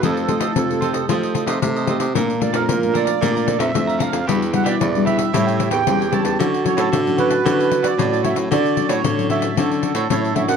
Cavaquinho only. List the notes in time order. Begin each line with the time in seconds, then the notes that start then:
0.02 F4 A4 C5 D#5
0.28 F4 A4 C5 D#5
0.40 F4 A4 C5 D#5
0.81 F4 A4 C5 D#5
0.93 A4 C5 D#5
1.09 F4 A4 C5 D#5
1.23 A4 C5 D#5
1.34 F4 A4 C5 D#5
1.47 F4 A4 C5 D#5
1.76 A4 C5 D#5
1.88 F4 A4 C5 D#5
1.99 A4 C5 D#5
2.15 A4 D5 F5 A#5
2.40 A4 D5 F5 A#5
2.53 A4 D5 F5 A#5
2.93 A4 D5 F5 A#5
3.05 D5 F5 A#5
3.21 A4 D5 F5 A#5
3.35 D5 F5 A#5
3.46 A4 D5 F5 A#5
3.59 A4 D5 F5 A#5
3.87 D5 F5 A#5
3.98 A4 D5 F5 A#5
4.10 D5 F5 A#5
4.26 D4 G4 B4 E5
4.51 D4 G4 B4 E5
4.63 D4 G4 B4 E5
5.05 D4 G4 B4 E5
5.18 G4 B4 E5
5.33 E4 A4 C#5 G5
5.46 A4 C#5 G5
5.57 E4 A4 C#5 G5
5.70 E4 A4 C#5 G5
5.99 A4 C#5 G5
6.12 E4 A4 C#5 G5
6.24 A4 G5
6.40 F#4 A4 C#5 D5
6.64 F#4 A4 C#5 D5
6.77 F#4 A4 C#5 D5
7.17 F#4 A4 C#5 D5
7.29 A4 C#5 D5
7.44 F#4 A4 C#5 D5
7.59 A4 C#5 D5
7.71 F#4 A4 C#5 D5
7.82 F#4 A4 C#5 D5
8.11 A4 C#5 D5
8.23 F#4 A4 C#5 D5
8.35 A4 C#5 D5
8.51 F#4 A4 C#5 D5
8.77 F#4 A4 C#5 D5
8.89 F#4 A4 C#5 D5
9.30 F#4 A4 C#5 D5
9.42 A4 C#5 D5
9.57 F#4 A4 C#5 D5
9.71 A4 C#5 D5
9.82 F#4 A4 C#5 D5
9.95 F#4 A4 C#5 D5
10.24 A4 C#5 D5
10.35 F#4 A4 C#5 D5
10.48 A4 C#5 D5